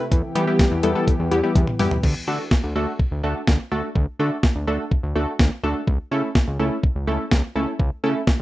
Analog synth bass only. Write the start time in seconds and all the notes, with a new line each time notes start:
0.12 E2
0.35 E3
0.71 E2
0.83 E2
1.19 E2
1.31 E2
1.55 E2
1.80 E2
2.03 D2
2.28 D3
2.64 D2
2.76 D2
3.11 D2
3.23 D2
3.47 D2
3.72 D2
3.96 D2
4.19 D3
4.55 D2
4.67 D2
5.03 D2
5.15 D2
5.39 D2
5.63 D2
5.87 C#2
6.11 C#3
6.47 C#2
6.60 C#2
6.95 C#2
7.07 C#2
7.31 C#2
7.55 C#2
7.79 C#2
8.04 C#3